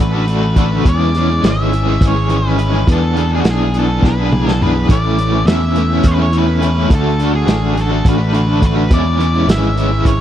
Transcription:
Already playing: A3 D4 F#4 A4
0.00 A1 B4
0.13 D4 F#4 A4
0.28 A3 D4 F#4 A4, closed hi-hat
0.42 D4 F#4 A4
0.56 D3 A3 D4 F#4 A4, kick, closed hi-hat
0.60 B4
0.71 D4 F#4 A4
0.85 E2 E3 G#3 C#4 G#4 D5, kick, closed hi-hat
1.15 E3 G#3 C#4 G#4, snare, closed hi-hat
1.30 G#3 C#4 G#4
1.44 G#1 E3 G#3 C#4 G#4, snare, closed hi-hat
1.48 E5
1.72 E3 G#3 C#4 G#4, closed hi-hat
1.87 G#3 C#4 G#4
2.01 G#1, kick, snare, closed hi-hat
2.08 C#5
2.15 G#3 C#4 G#4
2.29 E3 G#3 C#4 G#4, closed hi-hat
2.37 B4
2.43 G#3 C#4 G#4
2.58 E3 G#3 C#4, closed hi-hat
2.73 G#3 C#4 G#4
2.87 E2 E3 B3 D4 G#4, kick, closed hi-hat
2.93 A4
3.16 E3 B3 D4 G#4, closed hi-hat
3.31 B3 D4 G#4
3.35 G#4
3.40 F#4
3.44 B1 E3 B3, snare, closed hi-hat
3.50 G#4
3.73 E3 B3 D4 G#4, closed hi-hat
3.79 A4
3.89 D4 G#4
4.02 B1 B4, kick, snare
4.17 B3 D4 G#4
4.32 E3 B3 D4 G#4, mid tom
4.47 B3 D4 G#4 A4, snare
4.61 E3 B3 D4 G#4 B4, floor tom
4.75 B3 D4 G#4
4.89 A1 A2 E3 A3 C#4 E4 D5, kick, closed hi-hat
5.18 E3 C#4 E4, closed hi-hat
5.32 A3 C#4 E4
5.45 E2 A2 E3 A3 C#4 E5, snare, closed hi-hat
5.50 E4
5.75 E3 A3 C#4 E4, closed hi-hat
5.91 A3 C#4 E4
6.03 E2, kick, closed hi-hat
6.08 B4 C#5
6.19 A3 C#4 E4 C#5
6.32 E3 A3 C#4 E4, closed hi-hat
6.38 B4
6.47 C#4 E4
6.61 A2 E3 A3 C#4 E4, closed hi-hat
6.75 A3 C#4 E4
6.90 D2 D3 A3 D4 F#4, kick, closed hi-hat
6.95 A4
7.19 D3 A3 D4 F#4, closed hi-hat
7.33 A3 D4 F#4 G#4
7.47 A1 D3 A3 D4 F#4, snare, closed hi-hat
7.75 D3 A3 D4 F#4, snare, closed hi-hat
7.81 A4
7.91 A3 D4 F#4
8.05 A1 B4, kick, closed hi-hat
8.18 A3 D4 F#4
8.32 D3 A3 D4 F#4, closed hi-hat
8.47 A3 D4 F#4
8.61 D3 A3 D4 F#4, kick, closed hi-hat
8.66 B4
8.75 A3 D4 F#4
8.90 E2 E3 G#3 C#4 E4 D5, kick, closed hi-hat
9.19 E3 G#3 C#4 E4, closed hi-hat
9.33 G#3 C#4 E4
9.47 G#1 E3 G#3 C#4 E4 E5, snare, closed hi-hat
9.76 E3 G#3 C#4 E4, closed hi-hat
9.91 G#3 C#4 E4
10.05 G#1 C#5, kick, closed hi-hat

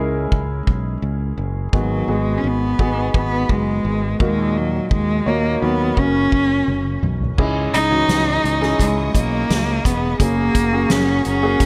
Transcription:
Already playing: C#2 G#2 G#3 C#4 E4 G#4 A#4
0.32 C#2, kick
0.67 B1, kick
1.02 C#2
1.38 F#1
1.73 G#1 G#2 D#3 F#3 B3 D#4 F#4 G#4, kick
2.08 G#1 B3 D#4 F#4 G#4
2.12 G#3
2.38 C#4
2.44 G#1 B3
2.79 G#1 B3 D#4 F#4 G#4, kick
3.14 G#1 B3, kick
3.49 F#1 G#3, kick
3.85 G#1
4.19 D#2 A#2 G#3 A#3 D#4 F#4 A#4, kick
4.57 F#3
4.91 D#2 G#3, kick
5.26 D#2 A#3 D#4 F#4 C#5
5.62 D#2 F#3 B3 D#4 F#4 A#4
5.97 F#1 C#3 A#3 C#4 F#4 A#4, kick
6.32 F#1, kick
6.68 F#1, high tom
7.03 B1, mid tom
7.21 floor tom
7.37 C#2 G#2 C#4 D#4 E4 G#4 D#5 C#6 D#6, kick, crash
7.74 C#2 D#4, closed hi-hat
7.91 E3 C#4 D#4 F#4
8.08 C#2, snare, closed hi-hat
8.44 C#2, closed hi-hat
8.61 C#4 D#4 E4 G#4, snare
8.79 C#2 G#3, kick, closed hi-hat
9.15 B1 A#3, kick, closed hi-hat
9.50 C#2, snare, closed hi-hat
9.85 E1 B3, kick, closed hi-hat
10.20 F#1 C#3 A#3 C#4 F#4 G#4 F#5 A#5 C#6, kick, closed hi-hat
10.55 F#1, kick, closed hi-hat
10.72 A#3 C#4 F#4 G#4
10.90 F#1 C#4, snare, closed hi-hat
11.25 F#1 C#4, closed hi-hat
11.42 A#3 C#4 F#4 G#4
11.60 F#1, kick, closed hi-hat

